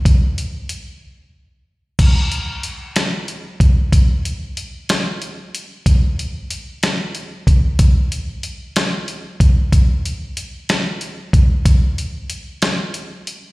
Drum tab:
CC |------|x-----|------|------|
HH |xxx---|xxxxxx|xxxxxx|xxxxxx|
SD |------|---o--|---o--|---o--|
BD |o-----|o----o|o-----|o----o|

CC |------|------|------|
HH |xxxxxx|xxxxxx|xxxxxx|
SD |---o--|---o--|---o--|
BD |o----o|o----o|o-----|